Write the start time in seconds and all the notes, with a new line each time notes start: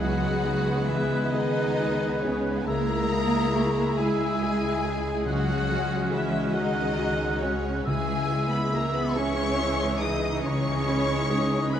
Already playing: C#2 G#3 G#4
0.00 C#2 F#3 B3 F#4 B4 F#5 F#6
0.45 B3 D#4 G#4
0.87 E3 B3 E4 G#4 E5
1.31 D#3 B3 D#4 G#4 D#5
1.78 B3 D#4 G#4
2.22 C#3 B3 C#4 D#4 G#4 C#5
2.66 C#2 G#3 A#3 E4 G#4 A#4 E5 A#5 E6
3.11 G#3 E4 G#4 D#6
3.55 G#3 E4 G#4 C#6
3.97 G#3 E4 G#4 G#5 E6
4.41 G#3 E4 G#4
4.84 G#3 E4 G#4
5.26 C#2 C#3 F#3 C#4 F#4 F#5 F#6
5.69 G#3 F#4 G#4
6.11 E3 G#3 E4 F#4 G#4 E5
6.53 D#3 G#3 D#4 F#4 G#4 D#5 F#6
6.99 G#3 F#4 G#4
7.42 C#3 G#3 C#4 F#4 G#4 C#5
7.85 C#2 C#3 E3 G#3 G#4 E5 G#5 E6
8.30 G#3 E4 G#4
8.51 B3 B4 B5
8.71 G#3 A#3 E4 G#4 A#4 A#5
8.93 B3 B4 B5
9.15 G#3 C#4 E4 G#4 C#5 G#5 C#6
9.59 G#3 E4 G#4
10.01 E3 G#3 D#4 G#4 D#5 D#6
10.43 C#2 C#4 D#4 C#5 D#5 A#5 C#6
10.87 G#3 D#4 G#4 B5
11.30 G#3 D#4 G#4 D#6
11.72 G#3 B3 D#4 G#4 B4 B5 F#6